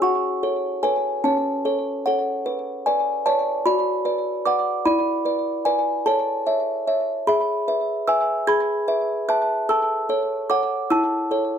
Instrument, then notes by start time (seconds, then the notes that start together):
music box
0.02 F#4 F#5 C#6
0.43 A4 C#5
0.83 A4 B4 C#5 G#5
1.24 C#4 C#5 A5
1.65 A4 C#5
2.06 A4 C#5 F#5
2.46 B4
2.86 B4 D5 G#5
3.26 B4 C#5 D5 A5
3.66 F#4 D5 B5
4.05 B4 D5
4.45 B4 D5 F#5 D6
4.85 E4 D5 B5
5.25 B4 D5
5.65 B4 D5 G#5
6.06 A4 C#5 A5
6.47 C#5 E5
6.87 C#5 E5
7.27 G#4 E5 B5
7.68 B4 E5
8.07 B4 E5 G#5 E6
8.47 G#4 B5 G#6
8.88 B4 E5
9.29 B4 E5 A5 F#6
9.69 A4 A5 E6
10.09 A4 C#5
10.50 A4 C#5 F#5 D6
10.90 E4 A5 E6
11.31 A4 C#5